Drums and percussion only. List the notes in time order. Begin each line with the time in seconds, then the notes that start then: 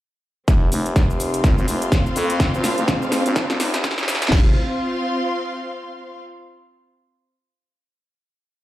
0.48 kick, snare, closed hi-hat, cabasa
0.72 open hi-hat, cabasa
0.86 closed hi-hat, cabasa
0.96 kick, snare, closed hi-hat, cabasa
1.10 cabasa
1.20 open hi-hat, cabasa
1.34 closed hi-hat, cabasa
1.44 kick, snare, closed hi-hat, cabasa
1.58 cabasa
1.68 open hi-hat, cabasa
1.82 closed hi-hat, cabasa
1.92 kick, snare, closed hi-hat, cabasa
2.06 cabasa
2.16 open hi-hat, cabasa
2.30 closed hi-hat, cabasa
2.40 kick, snare, closed hi-hat, cabasa
2.54 cabasa
2.64 snare, open hi-hat, cabasa
2.78 closed hi-hat, cabasa
2.88 kick, snare, closed hi-hat, cabasa
3.02 cabasa
3.12 snare, open hi-hat, cabasa
3.26 closed hi-hat, cabasa
3.36 kick, snare, closed hi-hat, cabasa
3.50 snare, cabasa
3.60 snare, open hi-hat, cabasa
3.74 snare, closed hi-hat, cabasa
3.84 kick, snare, closed hi-hat, cabasa
3.91 snare
3.98 snare, cabasa
4.03 snare
4.08 snare, open hi-hat, cabasa
4.15 snare
4.22 snare, closed hi-hat, cabasa
4.27 snare
4.32 kick, snare, crash